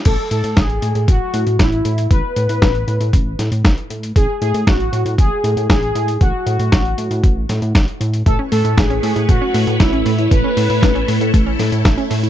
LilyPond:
<<
  \new Staff \with { instrumentName = "String machine" } { \time 4/4 \key a \major \tempo 4 = 117 << { r1 | r1 | r1 | r1 |
<a e' cis''>1~ | <a e' cis''>1 | } \\ { r1 | r1 | r1 | r1 |
b'1 | a'1 | } >> }
  \new Staff \with { instrumentName = "Analog polysynth" } { \time 4/4 \key a \major a'8 a'8 gis'4 fis'4 e'4 | b'2. r4 | gis'8 gis'8 fis'4 gis'4 gis'4 | fis'2. r4 |
a'8 a'8 gis'4 fis'4 e'4 | b'2. r4 | }
  \new Staff \with { instrumentName = "Synth arpeggio sound" } { \time 4/4 \key a \major r1 | r1 | r1 | r1 |
a16 cis'16 a16 e'16 a16 cis'16 a16 e'16 a16 cis'16 a16 e'16 a16 cis'16 a16 e'16 | a16 cis'16 a16 e'16 a16 cis'16 a16 e'16 a16 cis'16 a16 e'16 a16 cis'16 a16 e'16 | }
  \new Staff \with { instrumentName = "Analog synth bass" } { \clef bass \time 4/4 \key a \major a,,16 r16 a,16 a,16 a,,8 a,16 a,16 a,,16 r16 a,16 a,16 a,,8 a,8 | a,,16 r16 a,16 a,16 a,,8 a,16 a,16 a,,8 a,16 a,16 a,,16 r16 a,8 | a,,16 r16 a,16 a,16 a,,8 a,16 a,16 a,,16 r16 a,16 a,16 a,,8 a,8 | a,,16 r16 a,16 a,16 a,,8 a,16 a,16 a,,8 a,16 a,16 a,,16 r16 a,8 |
a,,16 r16 a,16 a,16 a,,8 a,16 a,16 a,,16 r16 a,16 a,16 a,,8 a,8 | a,,16 r16 a,16 a,16 a,,8 a,16 a,16 a,,8 a,16 a,16 a,,16 r16 a,8 | }
  \new DrumStaff \with { instrumentName = "Drums" } \drummode { \time 4/4 <cymc hh bd>8 hh16 hh16 <hh bd sn>16 hh16 hh16 hh16 <hh bd>8 hh16 hh16 <hh bd sn>16 hh16 hh16 hh16 | <hh bd>8 hh16 hh16 <hh bd sn>16 hh16 hh16 hh16 <hh bd>8 <hh sn>16 hh16 <hh bd sn>16 hh16 hh16 hh16 | <hh bd>8 hh16 hh16 <hh bd sn>16 hh16 hh16 hh16 <hh bd>8 hh16 hh16 <hh bd sn>16 hh16 hh16 hh16 | <hh bd>8 hh16 hh16 <hh bd sn>16 hh16 hh16 hh16 <hh bd>8 <hh sn>16 hh16 <hh bd sn>16 hh16 hh16 hh16 |
<hh bd>8 hho16 hh16 <hh bd sn>16 hh16 hho16 hh16 <hh bd>8 hho16 hh16 <hh bd sn>16 hh16 hho16 hh16 | <hh bd>8 hho16 hho16 <hh bd sn>16 hh16 hho16 hh16 <hh bd>8 <hho sn>16 hh16 <hh bd sn>16 hh16 hho16 hh16 | }
>>